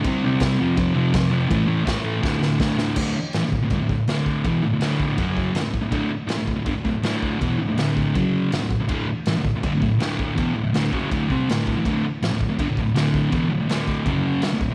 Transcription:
<<
  \new Staff \with { instrumentName = "Distorted electric guitar" } { \clef bass \time 4/4 \key d \mixolydian \tempo 4 = 162 <c g c'>8 <c g c'>8 <c g c'>8 <f, c f>8 <f, c f>8 <f, c f>8 <f, c f>8 <f, c f>8 | <a, e a>8 <a, e a>8 <a, e a>8 <a, e a>8 <d, a, d>8 <d, a, d>8 <d, a, d>8 <d, a, d>8 | <d, a, d>8 r8 <a, e>16 <d, a,>8 <d, a,>16 <g, d>16 <d, a,>16 <d, a,>8 <d, a, d>4 | <e, b, e>8 <d, a,>16 <d, a,>16 <d, a, d>4 <fis, cis fis>4 <g, d>16 <d, a,>8 <d, a,>16 |
<d, a, d>8 r8 <a, e>16 <d, a,>8 <d, a,>16 <g, d>16 <d, a,>16 <d, a,>8 <d, a, d>4 | <e, b, e>8 <d, a,>16 <d, a,>16 <d, a, d>4 <fis, cis fis>4 <g, d>16 <d, a,>8 <d, a,>16 | <d, a, d>8 r8 <a, e>16 <d, a,>8 <d, a,>16 <g, d>16 <d, a,>16 <d, a,>8 <d, a, d>4 | <e, b, e>8 <d, a,>16 <d, a,>16 <d, a, d>8 <fis, cis fis>8 <d, a, d>8 <c g c'>8 <d, a, d>8. <a, e>16 |
<d, a, d>8 r8 <a, e>16 <d, a,>8 <d, a,>16 <g, d>16 <d, a,>16 <d, a,>8 <d, a, d>4 | <e, b, e>8 <d, a,>16 <d, a,>16 <d, a, d>4 <fis, cis fis>4 <g, d>16 <d, a,>8 <d, a,>16 | }
  \new DrumStaff \with { instrumentName = "Drums" } \drummode { \time 4/4 <cymc bd>4 <cymc bd sn>4 <cymc bd>4 <cymc bd sn>4 | <cymc bd>4 <cymc bd sn>4 <bd sn>8 sn8 <bd sn>8 sn8 | <cymc bd>4 <cymc sn>8 bd8 <cymc bd>8 bd8 <cymc sn>8 bd8 | <cymc bd>4 <cymc sn>8 bd8 <cymc bd>8 bd8 <cymc sn>8 bd8 |
<cymc bd>4 <cymc sn>8 bd8 <cymc bd>8 bd8 <cymc sn>8 bd8 | <cymc bd>4 <cymc sn>8 bd8 <cymc bd>4 <cymc sn>8 bd8 | <cymc bd>4 <cymc sn>8 bd8 <cymc bd>8 bd8 <cymc sn>8 bd8 | <cymc bd>4 <cymc sn>8 bd8 <cymc bd>8 bd8 <cymc sn>8 bd8 |
<cymc bd>4 <cymc sn>8 bd8 <cymc bd>8 bd8 <cymc sn>8 bd8 | <cymc bd>4 <cymc sn>8 bd8 <cymc bd>4 <cymc sn>8 bd8 | }
>>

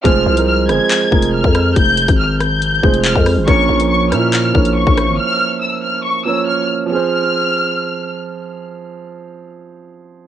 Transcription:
<<
  \new Staff \with { instrumentName = "Violin section" } { \time 4/4 \key f \minor \tempo 4 = 140 f'''4 f'''8 aes'''4. f'''4 | g'''4 f'''8 g'''4. f'''8 r8 | des'''4 des'''8 f'''4. des'''4 | f'''4 e'''8 f'''8 des'''8 e'''8 f'''8 r8 |
f'''2. r4 | r1 | }
  \new Staff \with { instrumentName = "Grand piano" } { \time 4/4 \key f \minor <f aes c' aes' c''>8. <f aes c' aes' bes'>8. <f aes c' aes' c''>4 <f aes c' aes' bes'>4.~ | <f aes c' aes' bes'>16 r2 r16 <f aes c' aes' c''>4. | <f bes des' bes' des''>8. <f bes des' bes' des''>8. <f bes des' e' bes'>4 <f bes des' bes' des''>4.~ | <f bes des' bes' des''>16 r2 r16 <f bes des' bes' des''>4. |
<f c' aes' c''>1~ | <f c' aes' c''>1 | }
  \new Staff \with { instrumentName = "808-style bass" } { \clef bass \time 4/4 \key f \minor f,,8 c,4 g,,16 r8. f,,8. f,8. | f,,8. aes,,4.~ aes,,16 f,,8. f,8 aes,,16 | bes,,8 bes,,4 bes,4 bes,,8. bes,,8 aes,,16 | r1 |
r1 | r1 | }
  \new DrumStaff \with { instrumentName = "Drums" } \drummode { \time 4/4 <hh bd>8. hh16 r8 <hh ss>8 <hc hh>8 bd16 hh16 r16 bd16 <hh ss>8 | <hh bd>8 hh16 <hh bd>16 r8 <hh ss>8 hh8 bd16 hh16 hc16 bd16 <hho ss>8 | <hh bd>8. hh16 r8 <hh ss>8 <hc hh>8 bd16 hh16 r16 bd16 <hh ss>8 | r4 r4 r4 r4 |
r4 r4 r4 r4 | r4 r4 r4 r4 | }
>>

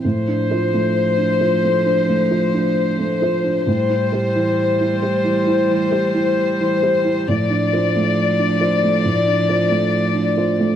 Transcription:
<<
  \new Staff \with { instrumentName = "Violin section" } { \time 4/4 \key d \dorian \tempo 4 = 67 c''1 | c''1 | d''1 | }
  \new Staff \with { instrumentName = "Felt piano" } { \time 4/4 \key d \dorian a,16 d'16 <f' c''>16 a8 d'16 <f' c''>16 a16 d'16 a16 <f' c''>16 d'8 a16 <f' c''>16 d'16 | a,16 e'16 <g' c''>16 e8 e'16 <g' c''>16 e16 e'16 e16 <g' c''>16 e'8 e16 <g' c''>16 e'16 | a,16 d'16 <f' c''>16 a8 d'16 <f' c''>16 a16 a,16 d'16 <f' c''>16 a8 d'16 <f' c''>16 a16 | }
  \new Staff \with { instrumentName = "Cello" } { \clef bass \time 4/4 \key d \dorian f1 | g1 | f1 | }
>>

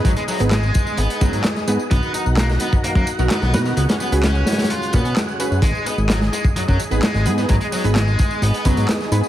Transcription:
<<
  \new Staff \with { instrumentName = "Synth stab" } { \time 4/4 \key gis \minor \tempo 4 = 129 r8. <b dis' gis' b'>16 r4. <b dis' gis' b'>16 r8. <b dis' gis' b'>16 r16 | r2 r8. <b dis' fis' ais'>16 r8 <b dis' fis' ais'>16 <b dis' fis' ais'>16 | r8. <cis' fis' gis' b'>16 r4. <cis' fis' gis' b'>16 r8. <cis' fis' gis' b'>16 r16 | r2 r8. <b dis' gis' b'>16 r8 <b dis' gis' b'>16 <b dis' gis' b'>16 |
r8. <b dis' gis' b'>16 r4. <b dis' gis' b'>16 r8. <b dis' gis' b'>16 r16 | }
  \new Staff \with { instrumentName = "Distorted electric guitar" } { \time 4/4 \key gis \minor fis16 gis16 fis16 r16 gis4 b8 fis16 fis16 r4 | b8 dis'16 r16 ais16 r16 b16 r16 ais16 ais16 r8 b8 b'16 r16 | b16 cis'16 b16 r16 cis'4 eis'8 b16 b16 r4 | gis8 b16 r16 fis16 r16 gis16 r16 fis16 fis16 r8 gis8 gis'16 r16 |
fis16 gis16 fis16 r16 gis4 b8 fis16 fis16 r4 | }
  \new Staff \with { instrumentName = "Tonewheel organ" } { \time 4/4 \key gis \minor dis'1 | fis'1~ | fis'1 | dis'1~ |
dis'1 | }
  \new Staff \with { instrumentName = "Tonewheel organ" } { \clef bass \time 4/4 \key gis \minor << { gis1 | ais'1 | gis1~ | gis1~ |
gis1 | } \\ { r1 | <dis fis>1 | <cis fis>1 | r1 |
r1 | } >> }
  \new Staff \with { instrumentName = "Analog synth bass" } { \clef bass \time 4/4 \key gis \minor gis,,16 r8 gis,,8. r8 gis,,16 r16 cis,16 gis,16 r8 gis,16 r16 | b,,16 r8 b,,8. r8 fis,16 fis,16 r16 b,,16 r16 b,,16 b,8 | cis,16 r8 cis,8. r4 ais,16 b,16 r8. fis,16 | gis,,16 r8 gis,,8. r8 fis,16 fis,16 r16 gis,,16 r16 gis,,16 gis,8 |
gis,,16 r8 gis,,8. r8 gis,,16 r16 cis,16 gis,16 r8 gis,16 r16 | }
  \new DrumStaff \with { instrumentName = "Drums" } \drummode { \time 4/4 <hh bd tamb>16 <hh tamb>16 <hho tamb>16 <hh tamb>16 <hc hh sn tamb>16 tamb16 <hh bd tamb>16 tamb16 <hh tamb>16 <hh tamb>16 <hh bd tamb>16 <hh tamb>16 <hc hh sn tamb>16 <sn tamb>16 <hh tamb>16 tamb16 | <hh bd tamb>16 tamb16 <hh tamb>16 tamb16 <hc hh sn tamb>16 <sn tamb>16 <hh tamb>16 <bd tamb>16 <hh tamb>16 <bd tamb>16 <hh tamb>16 tamb16 <hc hh sn tamb>16 <sn tamb>16 <hh sn tamb>16 <sn tamb>16 | <hh tamb>16 <hh sn tamb>16 <sn tamb>16 <hh tamb>16 <hc hh sn tamb>16 tamb16 <hh sn tamb>32 <hh sn>32 <hh sn tamb>32 <hh sn>32 <hh tamb>16 <hh tamb>16 <hh bd tamb>16 <hh tamb>16 <hc hh sn tamb>16 tamb16 <hh tamb>16 tamb16 | <hh bd tamb>16 tamb16 <hh tamb>16 tamb16 <hc hh sn tamb>16 <sn tamb>16 <hh tamb>16 <bd tamb>16 <hh tamb>16 <bd tamb>16 <hh tamb>16 tamb16 <hc hh sn tamb>16 <sn tamb>16 <hh tamb>16 <sn tamb>16 |
<hh bd tamb>16 <hh tamb>16 <hho tamb>16 <hh tamb>16 <hc hh sn tamb>16 tamb16 <hh bd tamb>16 tamb16 <hh tamb>16 <hh tamb>16 <hh bd tamb>16 <hh tamb>16 <hc hh sn tamb>16 <sn tamb>16 <hh tamb>16 tamb16 | }
>>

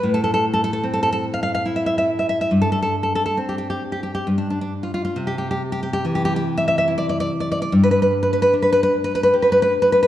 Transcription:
\new Staff \with { instrumentName = "Nylon-string guitar" } { \time 3/4 \key c \major \tempo 4 = 72 << { r32 a'32 a'32 a'32 r32 a'32 a'32 a'32 r32 a'32 a'32 a'32 r32 f''32 f''32 f''32 r32 e''32 e''32 e''32 r32 e''32 e''32 e''32 | r32 a'32 a'32 a'32 r32 a'32 a'32 a'32 r32 g'32 g'32 g'32 r32 g'32 g'32 g'32 r32 d'32 d'32 d'32 r32 f'32 f'32 f'32 | r32 g'32 g'32 g'32 r32 g'32 g'32 g'32 r32 g'32 g'32 g'32 r32 e''32 e''32 e''32 r32 d''32 d''32 d''32 r32 d''32 d''32 d''32 | r32 b'32 b'32 b'32 r32 b'32 b'32 b'32 r32 b'32 b'32 b'32 r32 b'32 b'32 b'32 r32 b'32 b'32 b'32 r32 b'32 b'32 b'32 | } \\ { a,4 c'4 e'4 | g,4 c'4 g,4 | c4 e4 e'4 | g,4 d'4 g'4 | } >> }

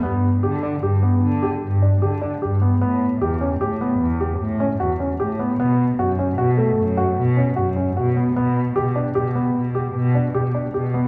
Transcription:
<<
  \new Staff \with { instrumentName = "Grand piano" } { \time 7/4 \key g \lydian \tempo 4 = 151 b4 g'8 d'8 g'8 b4 g'4 d'8 g'8 d'8 g'8 b8 | b4 g'8 cis'8 g'8 b4 g'4 cis'8 fis'8 cis'8 g'8 b8 | b4 fis'8 cis'8 fis'8 a4 fis'4 cis'8 fis'8 cis'8 fis'8 b8 | b4 g'8 d'8 g'8 b4 g'4 d'8 g'8 d'8 g'8 b8 | }
  \new Staff \with { instrumentName = "Cello" } { \clef bass \time 7/4 \key g \lydian g,4 d4 g,4 d4 g,4 d4 g,4 | a,4 e,4 a,4 e,4 a,4 e,4 a,4 | b,4 fis,4 b,4 fis,4 b,4 fis,4 b,4 | b,4 b,4 b,4 b,4 b,4 b,4 b,4 | }
>>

